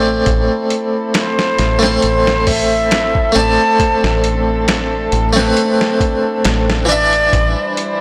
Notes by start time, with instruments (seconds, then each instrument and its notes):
Already playing: fingered electric bass A1, harpsichord A3 C4 D5
0.26 fingered electric bass A1, string section A3 C4 E4 A4, kick, closed hi-hat
0.70 closed hi-hat
1.14 flute C5, snare, closed hi-hat
1.39 snare
1.59 fingered electric bass A1, snare, closed hi-hat
1.79 harpsichord A3 C4, snare
1.86 harpsichord C5
2.02 fingered electric bass A1, flute C5, closed hi-hat
2.27 snare
2.47 flute E5, kick, open hi-hat
2.91 snare, closed hi-hat
3.15 kick
3.32 fingered electric bass A1, harpsichord A3 C4, flute A5, closed hi-hat
3.39 harpsichord D5
3.79 string section D4, kick, closed hi-hat
4.04 fingered electric bass A1, snare
4.24 closed hi-hat
4.68 snare, closed hi-hat
5.12 fingered electric bass A1, closed hi-hat
5.33 harpsichord A3 C4
5.37 harpsichord B4, snare
5.57 closed hi-hat
5.81 snare
6.00 kick, closed hi-hat
6.45 fingered electric bass A1, snare, closed hi-hat
6.70 snare
6.85 harpsichord E3 D4, closed hi-hat
6.89 flute D5, harpsichord E5
7.13 closed hi-hat
7.31 fingered electric bass A1, string section G3 E4 C5, kick, closed hi-hat
7.77 closed hi-hat